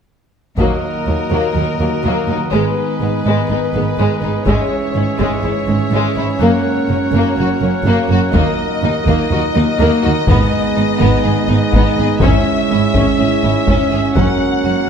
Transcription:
0.58 D#2 A#2 D#3 F#3 A#3 D#4 F#4 A#4 D#5, taiko
1.06 D#2 F#3 A#3
1.30 D#2 F#3 A#3
1.55 D#2 F#3 D#4
1.79 D#2 F#3 A#3
2.03 D#2 F#3 A#3
2.28 D#2 F#3 D#4
2.52 G#1 G#2 G#3 G#4 B4
3.00 G#1 G#2 G#3 B3
3.25 G#1 G#2 G#3
3.49 G#1 G#2 G#3 D#4
3.73 G#1 G#2 G#3 B3
3.98 G#1 G#2 G#3
4.22 G#1 G#2 G#3 D#4
4.46 G#1 G#2 E3 G#3 C#4 C#5 E5, taiko
4.95 G#1 G#2 G#3 C#4
5.19 G#1 G#2 G#3, taiko
5.43 G#1 G#2 G#3 E4
5.67 G#1 G#2 G#3 C#4
5.91 G#1 G#2 G#3
6.16 G#1 G#2 G#3 E4
6.39 F#1 F#2 F#3 A#3 F#4 A#4 F#5
6.88 F#1 F#2 A#3 C#4
7.12 F#1 F#2 A#3
7.37 F#1 F#2 A#3 F#4
7.61 F#1 F#2 A#3 C#4
7.85 F#1 F#2 A#3
8.09 F#1 F#2 A#3 F#4
8.33 D#2 A#2 A#3 D#4 D#5, taiko
8.82 D#2 A#3 D#4
9.06 D#2 A#3, taiko
9.31 D#2 A#3 F#4
9.55 D#2 A#3 D#4
9.80 D#2 A#3
10.03 D#2 A#3 F#4
10.27 G#1 G#2 G#3 B3 G#4 B4, taiko
10.76 G#1 G#2 B3 D#4
10.99 G#1 G#2 B3, taiko
11.24 G#1 G#2 B3 G#4
11.48 G#1 G#2 B3 D#4
11.73 G#1 G#2 B3, taiko
11.98 G#1 G#2 B3 G#4
12.21 G#1 G#2 C#4 C#5 E5, taiko
12.70 G#1 G#2 C#4 E4
12.94 G#1 G#2 C#4, taiko
13.19 G#1 G#2 C#4 G#4
13.43 G#1 G#2 C#4 E4
13.67 G#1 G#2 C#4, taiko
13.91 G#1 G#2 C#4 G#4
14.15 F#1 F#2 A#3 C#4 F#4 A#4 F#5, taiko, cymbal swell
14.64 F#1 F#2 C#4 F#4

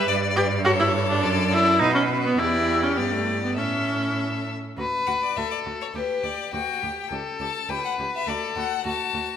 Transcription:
0.07 G2 D5
0.36 G4 B4
0.65 F#4 A4 C#5
0.80 E4
1.09 D4
1.22 F#2 D5
1.51 E4
1.79 B2 D#4 F#4 B4
1.95 C#4
2.26 B3
2.39 E2 E4 G4 D5
2.83 C#4
2.97 G2 B3 D5
3.12 A3
3.43 B3
3.57 A2 C#4 A4 E5
4.77 D2 F#4 B4
5.07 D2 F#4 F#5
5.22 D5
5.36 D2 F#4 A4 E5
5.51 D5
5.66 D2 F#4
5.81 C#5
5.94 D2 G4 B4
6.24 D2 G4 D5
6.53 D2 F#4 G4 G5
6.82 D2 G4
7.10 C#2 G4 A4
7.40 C#2 G4 A5
7.69 C#2 G4 B4 G5
7.85 F#5
7.98 C#2 G4
8.15 E5
8.27 D2 F#4 A4 D5
8.56 D2 F#4 F#5
8.84 D2 F#4 A5
9.13 D2 F#4

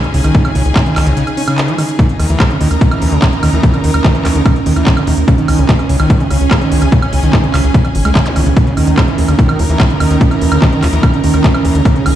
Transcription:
Already playing: C#4 D#4 G#4 G#5
0.04 closed hi-hat
0.14 C#2 C#3, open hi-hat
0.24 C#2 D#3, closed hi-hat, high woodblock
0.35 kick, closed hi-hat
0.45 C3, closed hi-hat, high woodblock
0.55 C#2 C#3, open hi-hat
0.65 C#2, closed hi-hat
0.76 C#3, kick, clap, closed hi-hat, high woodblock
0.86 D#3, closed hi-hat
0.96 C#2, clap, open hi-hat, high woodblock
1.06 C#2 C3, closed hi-hat
1.17 C#3, closed hi-hat
1.27 closed hi-hat, high woodblock
1.37 C#4, open hi-hat
1.48 C#3, closed hi-hat, high woodblock
1.58 clap, closed hi-hat
1.68 F3, closed hi-hat
1.78 D#3, open hi-hat, high woodblock
1.89 closed hi-hat
1.99 D#3 C#4 D#4, kick, closed hi-hat
2.08 A#5, closed hi-hat
2.20 D#2 D#3, open hi-hat, high woodblock
2.24 A#4
2.30 D#2 E3, closed hi-hat
2.40 kick, clap, closed hi-hat, high woodblock
2.50 C#3, closed hi-hat
2.61 D#2 D#3, open hi-hat
2.71 D#2, closed hi-hat, high woodblock
2.81 D#3, kick, closed hi-hat
2.91 E3, closed hi-hat, high woodblock
3.02 D#2, open hi-hat
3.12 D#2 C#3, closed hi-hat
3.22 D#3, kick, clap, closed hi-hat, high woodblock
3.33 closed hi-hat
3.43 D#2 D#3, open hi-hat, high woodblock
3.53 D#2 E3, closed hi-hat
3.63 kick, closed hi-hat
3.74 C#3, closed hi-hat, high woodblock
3.84 D#2 D#3, open hi-hat
3.94 D#2, closed hi-hat, high woodblock
4.04 D#3, kick, clap, closed hi-hat
4.15 E3, closed hi-hat
4.25 D#2, clap, open hi-hat, high woodblock
4.35 D#2 C#3, closed hi-hat
4.46 D#3, kick, closed hi-hat, high woodblock
4.56 closed hi-hat
4.66 D#2 D#3, open hi-hat
4.76 D#2 E3, closed hi-hat, high woodblock
4.87 kick, clap, closed hi-hat
4.97 C#3, closed hi-hat, high woodblock
5.07 D#2 D#3, open hi-hat
5.17 D#2, closed hi-hat
5.28 C#3, kick, closed hi-hat, high woodblock
5.38 D#3, closed hi-hat
5.47 C#2 G#5, open hi-hat, high woodblock
5.56 C#2 C3 G#4, closed hi-hat
5.69 C#3, kick, clap, closed hi-hat
5.79 closed hi-hat, high woodblock
5.89 C#2 C#3, open hi-hat
6.00 C#2 D#3, closed hi-hat, high woodblock
6.10 kick, closed hi-hat
6.20 C3, closed hi-hat
6.30 C#2 C#3, open hi-hat, high woodblock
6.41 C#2, closed hi-hat
6.51 C#3, kick, clap, closed hi-hat, high woodblock
6.61 D#3, closed hi-hat
6.72 C#2, open hi-hat
6.82 C#2 C3, closed hi-hat, high woodblock
6.92 C#3, kick, closed hi-hat
7.02 closed hi-hat, high woodblock
7.13 C#2 C#3, open hi-hat
7.23 C#2 D#3, closed hi-hat
7.33 kick, clap, closed hi-hat, high woodblock
7.43 C3, closed hi-hat
7.54 C#2 C#3, clap, open hi-hat, high woodblock
7.64 C#2, closed hi-hat
7.74 C#3, kick, closed hi-hat
7.85 D#3, closed hi-hat, high woodblock
7.95 G#1, open hi-hat
8.05 C#2 G#3, closed hi-hat, high woodblock
8.15 D#3, kick, clap, closed hi-hat
8.26 closed hi-hat, zap
8.36 C#2 D#3, open hi-hat, high woodblock
8.46 C#2 C#3, closed hi-hat
8.56 D#4, kick, closed hi-hat
8.67 C#3 A#4, closed hi-hat
8.77 D#2 D#3, open hi-hat, high woodblock
8.87 D#2, closed hi-hat
8.98 F#3, kick, clap, closed hi-hat, high woodblock
9.03 A#5
9.08 E3, closed hi-hat
9.18 D#2, open hi-hat
9.28 D#2 C#3, closed hi-hat, high woodblock
9.39 D#3, kick, closed hi-hat
9.49 closed hi-hat, high woodblock
9.59 D#2 F#3, open hi-hat
9.69 D#2 E3, closed hi-hat
9.80 kick, clap, closed hi-hat, high woodblock
9.90 C#3, closed hi-hat
10.00 D#2 D#3, open hi-hat, high woodblock
10.11 D#2, closed hi-hat
10.21 F#3, kick, closed hi-hat
10.31 E3, closed hi-hat, high woodblock
10.41 D#2, open hi-hat
10.52 D#2 C#3, closed hi-hat, high woodblock
10.62 D#3, kick, clap, closed hi-hat
10.72 closed hi-hat
10.83 D#2 F#3, clap, open hi-hat, high woodblock
10.93 D#2 E3, closed hi-hat
11.03 kick, closed hi-hat, high woodblock
11.13 C#3, closed hi-hat
11.24 D#2 D#3, open hi-hat
11.34 D#2, closed hi-hat, high woodblock
11.44 F#3, kick, clap, closed hi-hat
11.54 E3, closed hi-hat, high woodblock
11.65 D#2, open hi-hat
11.75 D#2 C#3, closed hi-hat
11.85 C#3 C#4, kick, closed hi-hat, high woodblock
11.93 G#4 G#5, closed hi-hat
12.06 C#2 F3, open hi-hat, high woodblock

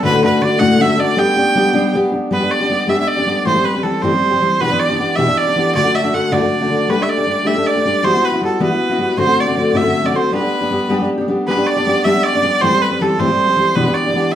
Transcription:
0.03 D2 A2 D3 A3 D4 F#4 B4
0.23 D3 A3 D4 F#4 B4
0.41 D3 A3 D4 F#4 D5
0.59 D2 A2 D3 A3 D4 F#4 F#5
0.78 D3 A3 D4 F#4 E5
0.97 D3 A3 D4 F#4 D5
1.16 G3 B3 D4 G4 G5
1.37 B3 D4 G4
1.55 G3 B3 D4 G4
1.73 G3 B3 D4 G4
1.93 G3 B3 D4 G4
2.12 B3 D4 G4
2.31 G3 B3 D4 G4 B4
2.40 B3 D4 G4
2.51 D5
2.60 B3 D4 G4
2.70 G3 B3 D4 G4
2.87 G3 B3 D4 G4 E5
2.98 B3 D4 G4 E5
3.08 D5
3.17 B3 D4 G4
3.26 G3 B3 D4 G4
3.45 A2 E3 G3 C4 G4 C5
3.54 G3 C4 G4
3.65 B4
3.75 G3 C4 G4
3.83 E3 G3 C4 G4 A4
4.02 A2 E3 G3 C4 G4 C5
4.11 G3 C4 G4
4.31 G3 C4 G4
4.41 E3 G3 C4 G4
4.60 E2 B2 E3 B3 D4 G4 B4
4.70 E3 B3 D4 G4
4.80 D5
4.89 E3 B3 D4 G4
4.99 E3 B3 D4 G4
5.16 E2 B2 E3 B3 D4 G4 E5
5.27 E3 B3 D4 G4
5.38 D5
5.46 E3 B3 D4 G4
5.56 E3 B3 D4 G4
5.74 D2 A2 D3 A3 D4 F#4 D5
5.84 D3 A3 D4 F#4
5.95 E5
6.02 D3 A3 D4 F#4
6.12 D3 A3 D4 F#4 F#5
6.30 D2 A2 D3 A3 D4 F#4 D5
6.41 D3 A3 D4 F#4
6.61 D3 A3 D4 F#4
6.69 D3 A3 D4 F#4
6.89 G3 A3 D4 G4 B4
6.97 A3 D4 G4
7.03 E5
7.09 D5
7.17 A3 D4 G4
7.26 G3 A3 D4 G4
7.44 G3 A3 D4 G4 E5
7.55 A3 D4 G4
7.67 D5
7.75 A3 D4 G4
7.85 G3 A3 D4 G4
8.03 E3 G3 B3 E4 F#4 C5
8.14 B3 E4 F#4
8.25 B4
8.32 B3 E4 F#4
8.41 G3 B3 E4 F#4 A4
8.60 E3 G3 B3 E4 F#4 B4
8.70 B3 E4 F#4
8.89 B3 E4 F#4
8.98 G3 B3 E4 F#4
9.17 D2 A2 D3 A3 C4 F#4 C5
9.27 D3 A3 C4 F#4
9.40 D5
9.47 D3 A3 C4 F#4
9.55 D3 A3 C4 F#4
9.73 D2 A2 D3 A3 C4 F#4 E5
9.83 D3 A3 C4 F#4
10.03 D3 A3 C4 F#4 D5
10.12 D3 A3 C4 F#4 C5
10.32 G3 B3 D4 G4 B4
10.41 B3 D4 G4
10.61 B3 D4 G4
10.71 G3 B3 D4 G4
10.90 G3 B3 D4 G4
10.99 B3 D4 G4
11.18 B3 D4 G4
11.28 G3 B3 D4 G4
11.48 G3 B3 D4 G4 B4
11.57 B3 D4 G4
11.67 D5
11.76 B3 D4 G4
11.86 G3 B3 D4 G4
12.05 G3 B3 D4 G4 E5
12.14 B3 D4 G4
12.24 D5
12.33 B3 D4 G4
12.42 G3 B3 D4 G4
12.62 A2 E3 G3 C4 G4 C5
12.71 G3 C4 G4
12.82 B4
12.90 G3 C4 G4
13.00 E3 G3 C4 G4 A4
13.19 A2 E3 G3 C4 G4 C5
13.28 G3 C4 G4
13.47 G3 C4 G4
13.56 E3 G3 C4 G4
13.75 E2 B2 E3 B3 D4 G4 B4
13.86 E3 B3 D4 G4
13.94 D5
14.05 E3 B3 D4 G4
14.13 E3 B3 D4 G4
14.32 E5

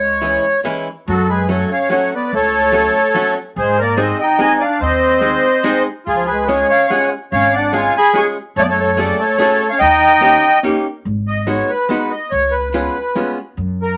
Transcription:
Already playing: C#2 G#3 C#5
0.22 E3 G#3 C#4 E4
0.65 E3 G#3 C#4 E4
1.08 F#2 F#3 F#4 A4
1.29 G#3 G#4 B4
1.49 F#3 A3 C#4 F#4 A4 C#5
1.71 C#4 C#5 F5
1.90 F#3 A3 C#4 F#4 C#5 F#5
2.15 B3 B4 D5
2.33 C#2 A3 A4 C#5
2.72 F#3 A3 C#4 F#4
3.14 F#3 A3 C#4 F#4
3.56 G#2 G#3 G#4 C5
3.79 A#3 A#4 D5
3.97 G#3 C4 D#4 G#4 C5 D#5
4.19 D#5 G5
4.23 D#4
4.38 G#3 C4 D#4 G#4 D#5 G#5
4.43 D#4
4.59 D5 F5
4.65 D4
4.81 D#2 C4 C5 D#5
5.21 G#3 C4 D#4 G#4
5.64 G#3 C4 D#4 G#4
6.06 C#2 F4 G#4
6.11 F3
6.25 G#4 B4
6.32 G#3
6.46 G#3 C#4 F4 G#4 C#5
6.50 G#4
6.55 G#3
6.69 C#5 F5
6.73 C#4
6.88 G#3 C#4 F4 C#5 F#5
6.92 C#4 G#4
7.32 G#1 C#4 C#5 F5
7.53 D5 F#5
7.58 D4
7.73 G#3 C#4 F4 G#4 F5 G#5
7.77 F4
7.96 G#4 G#5 B5
8.14 G#3 C#4 F4 G#4 G#5 C#6
8.18 G#4
8.56 F#2 A3 A4 C#5
8.61 B3 D5
8.69 A3 A4 C#5
8.79 A3 A4 C#5
8.97 A3 C#4 F#4 G#4 A4 D5
9.02 A3
9.19 A3 A4 C#5
9.38 A3 C#4 F#4 G#4 A4 C#5
9.68 C#4 C#5 F5
9.79 D#2 D#4 D#5 G5
10.21 A#3 C#4 D#4 G4
10.63 A#3 C#4 D#4 G4
11.05 G#1
11.28 D#5
11.47 G#3 B3 D#4 F#4 C#5
11.70 B4
11.89 G#3 B3 D#4 F#4 B4
12.11 D#5
12.31 C#2 C#5
12.51 B4
12.70 G#3 F4 B4
12.75 B3 C#4
13.15 G#3 B3 C#4 F4
13.57 F#2
13.82 A#4

